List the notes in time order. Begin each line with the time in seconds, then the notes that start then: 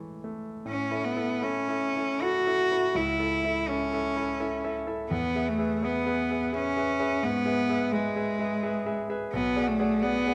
Already playing: A2 E3 G#3 A3
0.24 A3
0.65 A2 C#4
0.90 E4 A4 E5
1.05 B3
1.16 E4 A4 E5
1.41 C#4 E4 A4 E5
1.68 E4 A4 E5
1.96 E4 A4 E5
2.21 E4 F#4 A4 E5
2.46 E4 A4 E5
2.71 E4 A4 E5
2.95 C#2 E4
3.20 E4 A4 E5
3.44 E4 A4 E5
3.68 C#4 E4 A4 E5
3.93 E4 A4 E5
4.16 E4 A4 E5
4.40 E4 A4 E5
4.64 E4 A4 E5
4.87 E4 A4 E5
5.10 E2 B3
5.35 G#4 B4 E5
5.48 A3
5.58 G#4 B4 E5
5.82 B3 G#4 B4 E5
6.06 G#4 B4 E5
6.31 G#4 B4 E5
6.53 G#4 B4 E5
6.57 C#4
6.77 G#4 B4 E5
7.00 G#4 B4 E5
7.23 G#2 B3
7.46 G#4 B4 E5
7.69 G#4 B4 E5
7.92 G#3 G#4 B4 E5
8.16 G#4 B4 E5
8.39 G#4 B4 E5
8.63 G#4 B4 E5
8.86 G#4 B4 E5
9.09 G#4 B4 E5
9.32 B1 B3
9.56 G#4 D5 F#5
9.67 A3
9.79 G#4 D5 F#5
10.02 B3 G#4 D5 F#5
10.27 G#4 D5 F#5